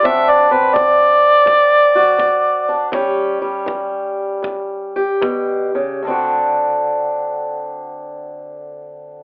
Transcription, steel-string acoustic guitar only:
0.03 0.70 D2 medium
0.03 0.50 C4 medium
0.03 2.67 D4 medium
0.03 1.94 F#4 medium
0.51 2.89 C4 medium
0.74 1.42 D3 medium
1.46 2.14 A2 medium
1.95 2.90 F#4 medium
2.18 2.88 D3 medium
2.69 2.90 D4 medium
2.92 3.62 A2 medium
2.92 3.40 G3 medium
2.92 6.00 C#4 medium
2.92 4.95 G4 medium
3.42 6.02 G3 medium
3.66 4.38 E3 medium
4.43 5.16 E2 medium
4.96 5.99 G4 medium
5.21 5.75 B2 medium
5.75 6.02 C#3 medium
6.03 9.23 D2 medium
6.03 9.23 D3 medium
6.07 9.23 C4 medium
6.07 9.23 D4 soft
6.07 9.23 F#4 soft

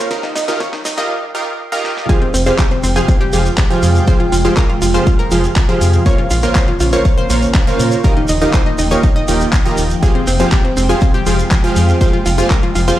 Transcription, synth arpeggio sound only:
0.11 0.19 A#4 loud
0.23 0.31 D#4 medium
0.36 0.43 D#4 medium
0.48 0.56 D#4 medium
0.60 0.68 C#5 medium
0.73 0.81 D#4 medium
0.85 0.93 D#4 medium
0.98 1.05 D#5 medium
2.09 2.17 G#4 loud
2.22 2.29 C4 medium
2.34 2.42 C4 medium
2.46 2.54 C4 medium
2.59 2.67 G4 loud
2.71 2.79 C4 medium
2.83 2.91 C4 medium
2.96 3.04 G#4 medium
3.08 3.16 C4 medium
3.21 3.98 G4 loud
4.07 4.15 C5 loud
4.20 4.28 F4 medium
4.32 4.40 F4 medium
4.45 4.52 F4 medium
4.57 4.65 A#4 medium
4.70 4.77 F4 medium
4.82 4.90 F4 medium
4.94 5.02 C5 medium
5.07 5.15 F4 medium
5.19 5.96 A#4 loud
6.06 6.14 C#5 loud
6.18 6.26 F4 medium
6.31 6.39 F4 medium
6.43 6.51 F4 medium
6.56 6.63 C5 loud
6.68 6.76 F4 medium
6.80 6.88 F4 medium
6.93 7.01 C#5 medium
7.05 7.13 F4 medium
7.18 7.94 C5 loud
8.04 8.12 A#4 loud
8.17 8.24 D#4 medium
8.29 8.37 D#4 medium
8.42 8.49 D#4 medium
8.54 8.62 C5 loud
8.66 8.74 D#4 medium
8.79 8.86 D#4 medium
8.91 8.99 C#5 medium
9.03 9.11 D#4 medium
9.16 9.93 D#5 loud
10.03 10.10 G#4 loud
10.15 10.23 C4 medium
10.27 10.35 C4 medium
10.40 10.48 C4 medium
10.52 10.60 G4 loud
10.64 10.72 C4 medium
10.77 10.85 C4 medium
10.89 10.97 G#4 medium
11.02 11.10 C4 medium
11.14 11.91 G4 loud
12.01 12.09 C5 loud
12.13 12.21 F4 medium
12.26 12.34 F4 medium
12.38 12.46 F4 medium
12.51 12.58 A#4 medium
12.63 12.71 F4 medium
12.75 12.83 F4 medium
12.88 12.96 C5 medium

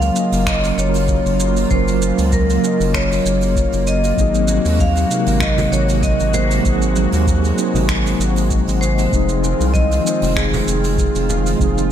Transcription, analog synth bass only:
0.00 0.11 C#2 medium
0.32 0.72 F#1 medium
0.77 1.19 F#1 loud
1.25 1.65 F#1 medium
1.71 2.12 F#1 loud
2.18 2.58 C#2 medium
2.80 3.20 F#1 medium
3.25 3.67 F#1 medium
3.73 4.13 F#1 medium
4.18 4.59 G#1 loud
4.65 5.05 D#2 medium
5.27 5.67 G#1 medium
5.72 6.14 G#1 medium
6.20 6.60 G#1 medium
6.65 7.07 G#1 loud
7.13 7.53 D#2 medium
7.74 8.14 G#1 medium
8.19 8.61 G#1 medium
8.67 9.07 G#1 medium
9.13 9.54 F1 loud
9.60 10.00 C2 medium
10.22 10.62 F1 medium
10.67 11.09 F1 medium
11.15 11.55 F1 medium
11.60 11.92 F1 loud

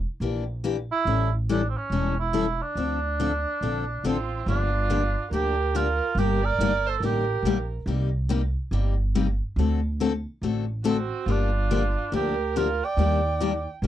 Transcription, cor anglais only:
0.92 1.31 E4 loud
1.50 1.67 D4 medium
1.70 1.79 C4 medium
1.77 2.19 C#4 medium
2.20 2.64 E4 loud
2.62 4.04 D4 loud
4.06 4.45 C4 medium
4.49 5.29 D4 loud
5.34 5.78 G4 loud
5.77 6.20 F4 medium
6.19 6.47 G4 loud
6.45 6.91 A#4 loud
6.89 7.03 A4 loud
7.05 7.69 G4 medium
10.88 11.32 C4 medium
11.31 12.14 D4 loud
12.16 12.59 G4 medium
12.58 12.87 F4 medium
12.85 13.69 D5 loud

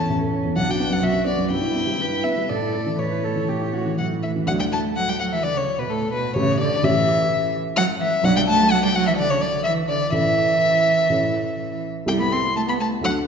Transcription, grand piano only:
0.00 0.10 A1 medium
0.00 0.44 E2 soft
0.00 0.32 C#4 medium
0.00 0.21 A4 medium
0.10 0.55 A1 medium
0.21 0.40 A4 soft
0.32 0.51 C#4 soft
0.44 0.56 E2 soft
0.56 1.00 B1 medium
0.69 0.87 F#4 soft
0.80 0.98 B3 soft
0.90 1.09 F#2 soft
1.01 1.49 B1 soft
1.14 1.34 F#4 soft
1.26 1.46 B3 soft
1.37 1.50 F#2 soft
1.50 1.98 G2 medium
1.62 1.82 E4 soft
1.74 1.94 B3 soft
1.87 2.07 G3 soft
1.99 2.47 G2 soft
2.12 2.31 E4 soft
2.24 2.44 B3 soft
2.38 2.50 G3 soft
2.50 2.97 A2 soft
2.62 2.82 E4 soft
2.74 2.94 A3 soft
2.86 3.06 E3 soft
2.98 3.47 A2 soft
3.12 3.32 E4 soft
3.24 3.44 A3 soft
3.36 3.56 E3 soft
3.49 3.98 A2 soft
3.61 3.81 E4 soft
3.73 3.93 A3 soft
3.85 4.05 E3 soft
4.00 4.47 A2 soft
4.12 4.31 E4 soft
4.24 4.43 A3 soft
4.36 4.48 E3 soft
4.46 6.33 D2 medium
4.46 6.33 A3 soft
4.46 6.34 F#4 soft
4.46 6.34 D5 soft
6.35 6.82 A1 medium
6.35 6.82 A3 soft
6.35 6.82 G4 soft
6.35 6.82 C#5 soft
6.83 8.19 A1 medium
6.83 8.19 A3 soft
6.83 8.20 G4 medium
6.83 8.20 C#5 soft
8.23 10.10 B1 medium
8.23 10.10 D4 medium
8.23 10.10 F#4 medium
8.23 10.10 D5 medium
10.12 11.07 A1 medium
10.12 11.07 E4 soft
10.12 11.08 A4 soft
10.12 11.08 D5 soft
11.09 12.04 A1 medium
11.09 12.04 E4 soft
11.09 12.04 A4 soft
11.09 12.05 C#5 soft
12.06 12.99 C2 medium
12.06 12.99 E4 soft
12.06 13.00 G4 soft
12.06 13.00 A4 soft
13.01 13.27 D2 medium
13.01 13.27 D4 soft
13.01 13.27 F#4 soft
13.01 13.27 A4 soft

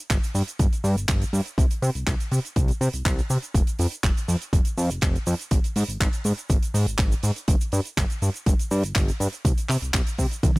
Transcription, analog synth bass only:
0.10 0.18 G1 loud
0.35 0.43 G2 medium
0.59 0.67 G1 medium
0.84 0.96 G2 medium
0.97 1.06 G1 soft
1.09 1.24 G1 medium
1.33 1.41 G2 medium
1.58 1.66 C2 loud
1.82 1.90 C3 medium
1.95 2.05 C2 soft
2.07 2.15 C2 loud
2.32 2.40 C3 medium
2.56 2.72 C2 medium
2.81 2.89 C3 loud
2.94 3.03 C2 soft
3.06 3.21 C2 medium
3.30 3.38 C3 medium
3.54 3.62 F1 medium
3.79 3.87 F2 medium
4.04 4.12 F1 loud
4.28 4.36 F2 medium
4.53 4.61 F1 medium
4.78 4.90 F2 medium
4.91 5.00 F1 soft
5.02 5.18 F1 medium
5.27 5.35 F2 medium
5.51 5.59 G#1 medium
5.76 5.84 G#2 medium
5.89 5.98 G#1 soft
6.00 6.08 G#1 loud
6.25 6.33 G#2 medium
6.50 6.58 G#1 medium
6.74 6.86 G#2 medium
6.87 6.96 G#1 soft
6.99 7.14 G#1 medium
7.23 7.31 G#2 medium
7.48 7.56 G1 medium
7.73 7.81 G2 medium
7.97 8.05 G1 loud
8.22 8.30 G2 medium
8.46 8.54 G1 medium
8.71 8.83 G2 medium
8.84 8.93 G1 soft
8.96 9.11 G1 medium
9.20 9.28 G2 medium
9.45 9.53 C2 loud
9.69 9.77 C3 medium
9.82 9.92 C2 soft
9.94 10.02 C2 loud
10.19 10.26 C3 medium
10.43 10.51 C2 medium

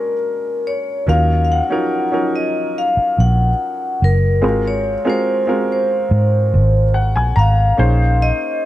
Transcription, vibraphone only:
0.00 0.70 A#4 medium
0.67 1.05 C#5 medium
1.09 1.41 F5 loud
1.45 1.51 F5 medium
1.52 2.30 F#5 loud
2.36 2.78 D#5 medium
2.78 3.20 F5 medium
3.20 4.05 F#5 medium
4.04 4.67 A#4 medium
4.68 5.09 C#5 medium
5.10 5.71 C5 medium
5.72 6.92 C5 medium
7.39 8.24 F5 medium
8.22 8.65 D#5 medium

